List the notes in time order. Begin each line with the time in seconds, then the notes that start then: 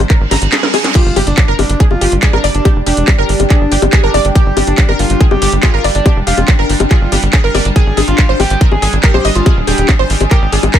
Already playing: G3 D4 G#5
0.10 A#4, kick, clap, closed hi-hat, reverse cymbal
0.21 G#1
0.31 G#1 A#5, snare, open hi-hat, high bongo
0.42 G#1, closed hi-hat
0.52 G#4, snare, clap, closed hi-hat
0.63 A#4, snare, zap
0.74 G#4, open hi-hat, high bongo
0.84 snare, closed hi-hat
0.95 G3 D4 F4 G4, kick, closed hi-hat, crash, impact
1.06 G1
1.16 G1 G4, open hi-hat, high bongo
1.27 G1 D4 D5, closed hi-hat
1.37 G5, kick, clap, closed hi-hat
1.48 G1 A#4
1.59 G1 D4, open hi-hat, high bongo
1.70 G1, closed hi-hat
1.80 G#4, kick, closed hi-hat
1.91 G1 F4, high bongo
2.01 G1 G4, open hi-hat
2.12 G1, closed hi-hat
2.23 D4 G#4, kick, clap, closed hi-hat
2.33 G#1 A#4, high bongo
2.44 G1 D5, open hi-hat
2.55 G1 D4, closed hi-hat
2.65 G4, kick, closed hi-hat, high bongo
2.76 F1
2.86 F1 D4 G4, open hi-hat
2.97 F1, closed hi-hat
3.08 kick, clap, closed hi-hat, high bongo
3.18 G1 A#4
3.29 G1, open hi-hat
3.40 G1, closed hi-hat, high bongo
3.50 D4 G#4, kick, clap, closed hi-hat
3.61 G1
3.72 G1 G4, open hi-hat
3.82 G1, closed hi-hat, high bongo
3.93 G#4, kick, clap, closed hi-hat
4.04 G1 D4 A#4
4.14 G1 D5, open hi-hat, high bongo
4.25 G1, closed hi-hat
4.35 G4, kick, closed hi-hat
4.46 G1
4.57 G1 G4, open hi-hat, high bongo
4.67 G1 D4, closed hi-hat
4.78 kick, clap, closed hi-hat
4.89 G1 A#4, high bongo
4.99 G1 F4, open hi-hat
5.10 G1, closed hi-hat
5.21 G#4, kick, closed hi-hat
5.31 G1 G4, high bongo
5.42 G1 G4, open hi-hat
5.52 G1, closed hi-hat
5.63 F4 G#4, kick, clap, closed hi-hat, high bongo
5.74 G#1 A#4
5.84 G1 D5, open hi-hat
5.95 G1 D4, closed hi-hat
6.06 G4, kick, closed hi-hat, high bongo
6.16 F1
6.27 F1 F4 G4, open hi-hat
6.38 F1, closed hi-hat, high bongo
6.48 kick, clap, closed hi-hat
6.59 G1 A#4
6.69 G1, open hi-hat
6.80 G1, closed hi-hat, high bongo
6.91 F4 G#4, kick, clap, closed hi-hat
7.01 G1
7.12 G1 G4, open hi-hat, high bongo
7.23 G1, closed hi-hat
7.33 G#4, kick, clap, closed hi-hat
7.44 G1 A#4
7.55 G1 D5, open hi-hat, high bongo
7.65 G1, closed hi-hat
7.76 G#4, kick, closed hi-hat
7.85 G#1 D#6
7.97 G#1 G#4, open hi-hat, high bongo
8.08 G#1 F4, closed hi-hat
8.15 G#5, kick, clap, closed hi-hat
8.29 G#1 C5
8.40 G#1 G4, open hi-hat, high bongo
8.50 G#1, closed hi-hat
8.61 A#4, kick, closed hi-hat
8.72 G#1 G#4, high bongo
8.82 G#1 G#4, open hi-hat
8.93 G#1, closed hi-hat
9.04 G4 A#4, kick, clap, closed hi-hat
9.14 A#1 C5, high bongo
9.25 G#1 D#5, open hi-hat
9.35 G#1 F4, closed hi-hat
9.46 G#4, kick, closed hi-hat, high bongo
9.57 D#1
9.67 D#1 G4 G#4, open hi-hat
9.78 D#1, closed hi-hat
9.89 kick, clap, closed hi-hat, high bongo
9.99 G#1 C5
10.10 G#1, open hi-hat
10.21 G#1, closed hi-hat, high bongo
10.31 G4 A#4, kick, clap, closed hi-hat
10.42 G#1
10.52 G#1 G#4, open hi-hat
10.63 G#1, closed hi-hat, high bongo
10.74 A#4, kick, clap, closed hi-hat